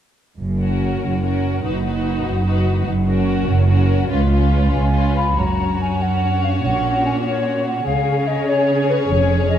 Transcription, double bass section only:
0.39 0.95 F#1 soft
1.02 1.57 F#1 soft
1.64 2.19 F#1 soft
2.26 2.80 F#1 soft
2.87 3.41 F#1 soft
3.49 4.03 F#1 soft
4.10 4.66 C#2 soft
4.73 5.31 C#2 soft
5.38 5.77 F#1 soft
6.64 7.03 A#1 soft
7.87 8.25 C#2 soft
9.10 9.48 F1 soft

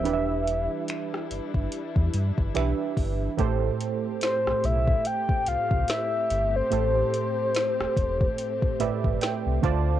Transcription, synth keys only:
0.03 2.50 E3 medium
0.03 2.51 D4 medium
0.03 2.51 G4 medium
0.03 2.51 B4 medium
0.03 0.13 D5 medium
0.13 2.55 E5 medium
2.54 3.38 E3 medium
2.54 3.38 D4 medium
2.54 3.37 G4 medium
2.54 3.39 B4 medium
2.54 3.39 E5 medium
3.37 6.67 A2 medium
3.37 6.67 A3 medium
3.37 6.68 G4 medium
3.37 6.68 A4 medium
3.37 6.69 C5 medium
6.70 8.75 A2 medium
6.70 8.76 A3 medium
6.70 8.76 G4 medium
6.70 8.77 A4 medium
6.70 8.77 C5 medium
8.80 9.63 A2 medium
8.80 9.62 A3 medium
8.80 9.63 G4 medium
8.80 9.64 B4 medium
8.80 9.64 D5 medium
8.80 9.19 E5 medium
9.22 9.61 G5 medium
9.62 10.00 D3 medium
9.62 10.00 A3 medium
9.62 10.00 F4 medium
9.62 10.00 C5 medium
9.62 10.00 D5 medium
9.62 10.00 A5 medium

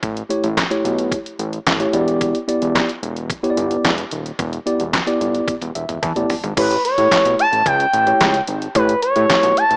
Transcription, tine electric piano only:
0.29 0.47 A3 medium
0.29 0.47 E4 medium
0.29 0.47 G4 medium
0.29 0.47 C#5 medium
0.70 1.17 A3 medium
0.70 1.17 E4 medium
0.70 1.17 G4 medium
0.70 1.17 C#5 medium
1.79 1.93 A3 medium
1.79 1.92 E4 medium
1.79 1.92 G4 medium
1.79 1.94 C#5 medium
1.93 2.37 B3 medium
1.93 2.37 E4 medium
1.93 2.37 G4 medium
1.93 2.37 D5 medium
2.48 2.88 B3 medium
2.48 2.88 E4 medium
2.48 2.89 G4 medium
2.48 2.89 D5 medium
3.43 3.90 B3 medium
3.43 3.90 E4 medium
3.43 3.90 G4 medium
3.43 3.50 C#5 medium
3.50 3.93 D5 loud
4.66 4.83 B3 medium
4.66 4.83 E4 medium
4.66 4.84 G4 medium
4.66 4.84 D5 medium
5.07 5.53 B3 medium
5.07 5.53 E4 medium
5.07 5.54 G4 medium
5.07 5.54 D5 medium
5.75 6.01 E5 medium
6.03 6.53 A5 medium
6.16 6.33 B3 medium
6.16 6.34 E4 medium
6.16 6.34 G4 medium
6.16 6.34 D5 medium
6.57 6.74 A3 medium
6.57 6.74 E4 medium
6.57 6.75 G4 medium
6.57 6.75 C#5 medium
6.98 7.44 A3 medium
6.98 7.44 E4 medium
6.98 7.44 G4 medium
6.98 7.45 C#5 medium
8.07 8.36 A3 medium
8.07 8.36 E4 medium
8.07 8.36 G4 medium
8.07 8.36 C#5 medium
8.75 8.92 A3 medium
8.75 8.93 E4 medium
8.75 8.93 G4 medium
8.75 8.93 C#5 medium
9.16 9.62 A3 medium
9.16 9.62 E4 medium
9.16 9.63 G4 medium
9.16 9.63 C#5 medium

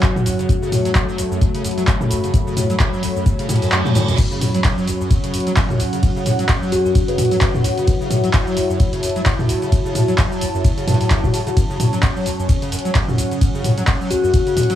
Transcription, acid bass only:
0.03 0.14 F#1 medium
0.16 0.27 F#2 medium
0.26 0.30 F#1 loud
0.39 0.47 C#3 medium
0.49 0.56 F#2 medium
0.62 0.70 C#3 loud
0.72 0.79 A2 medium
0.85 0.91 F#3 loud
0.95 1.06 F#1 medium
1.08 1.20 F#3 loud
1.18 1.23 F#1 loud
1.31 1.40 F#2 medium
1.41 1.49 E2 medium
1.54 1.63 C#3 loud
1.64 1.69 F#2 medium
1.78 1.83 F#3 loud
1.88 1.98 F#1 medium
2.01 2.12 F#2 medium
2.11 2.15 F#1 loud
2.24 2.32 C#3 medium
2.34 2.41 F#2 medium
2.47 2.55 C#3 loud
2.57 2.64 A2 medium
2.70 2.75 F#3 loud
2.80 2.91 F#1 medium
2.93 3.04 F#3 loud
3.03 3.07 F#1 loud
3.16 3.24 F#2 medium
3.26 3.33 E2 medium
3.39 3.47 C#3 loud
3.49 3.56 A2 medium
3.62 3.68 F#2 medium
3.72 3.83 F#2 medium
3.85 3.91 A3 medium
3.95 4.00 A2 loud
4.08 4.14 F#2 loud
4.18 4.26 F#2 medium
4.31 4.40 C#3 loud
4.41 4.49 A2 medium
4.55 4.60 F#3 loud
4.64 4.75 F#1 medium
4.78 4.89 F#3 loud
4.88 4.92 F#1 loud
5.01 5.09 F#2 medium
5.11 5.18 E2 medium
5.24 5.32 C#3 loud
5.34 5.38 F#2 medium
5.47 5.52 F#3 loud
5.57 5.68 F#1 medium
5.70 5.81 F#2 medium
5.80 5.84 F#1 loud
5.93 6.01 C#3 medium
6.03 6.10 F#2 medium
6.16 6.24 C#3 loud
6.26 6.33 A2 medium
6.39 6.45 F#3 loud
6.49 6.60 F#1 medium
6.62 6.74 F#3 loud
6.72 6.76 F#1 loud
6.85 6.93 F#2 medium
6.95 7.02 E2 medium
7.08 7.17 C#3 loud
7.18 7.23 F#2 medium
7.31 7.37 F#3 loud
7.41 7.52 F#1 medium
7.54 7.66 F#2 medium
7.64 7.69 F#1 loud
7.78 7.86 C#3 medium
7.88 7.95 F#2 medium
8.01 8.09 C#3 loud
8.11 8.18 A2 medium
8.24 8.29 F#3 loud
8.34 8.45 F#1 medium
8.47 8.58 F#3 loud
8.57 8.61 F#1 loud
8.70 8.78 F#2 medium
8.80 8.87 E2 medium
8.93 9.01 C#3 loud
9.03 9.07 F#2 medium
9.16 9.22 F#3 loud
9.26 9.37 F#1 medium
9.39 9.51 F#2 medium
9.49 9.53 F#1 loud
9.62 9.70 C#3 medium
9.72 9.79 F#2 medium
9.85 9.93 C#3 loud
9.95 10.02 A2 medium
10.08 10.14 F#3 loud
10.18 10.29 F#1 medium
10.31 10.43 F#3 loud
10.41 10.46 F#1 loud
10.54 10.63 F#2 medium
10.64 10.72 E2 medium
10.78 10.86 C#3 loud
10.88 10.98 G2 loud
11.01 11.12 A2 medium
11.11 11.25 F#2 loud
11.24 11.29 B2 medium
11.34 11.41 C#3 medium
11.47 11.50 C#3 loud
11.57 11.64 F#2 medium
11.70 11.78 C#3 loud
11.80 11.87 A2 medium
11.93 11.98 F#3 loud
12.03 12.14 F#1 medium
12.16 12.27 F#3 loud
12.26 12.30 F#1 loud
12.39 12.47 F#2 medium
12.49 12.56 E2 medium
12.62 12.70 C#3 loud
12.72 12.76 F#2 medium
12.85 12.91 F#3 loud
12.95 13.06 F#1 medium
13.08 13.20 F#2 medium
13.18 13.23 F#1 loud
13.31 13.40 C#3 medium
13.41 13.49 F#2 medium
13.54 13.63 C#3 loud
13.64 13.72 A2 medium
13.78 13.83 F#3 loud
13.87 13.98 F#1 medium
14.01 14.12 F#3 loud
14.11 14.15 F#1 loud
14.24 14.32 F#2 medium
14.34 14.41 E2 medium
14.47 14.55 C#3 loud
14.57 14.61 F#2 medium
14.70 14.75 F#3 loud

